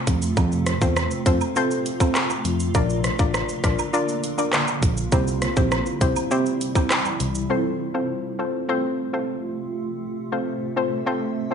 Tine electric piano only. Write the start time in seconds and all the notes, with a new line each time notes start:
0.07 F2
0.37 F2
0.82 E2
1.26 F2
2.45 F2
2.75 A#1
3.19 A1
3.64 A#1
4.83 A#1
5.12 C2
5.57 A#1
6.01 C2
7.20 C2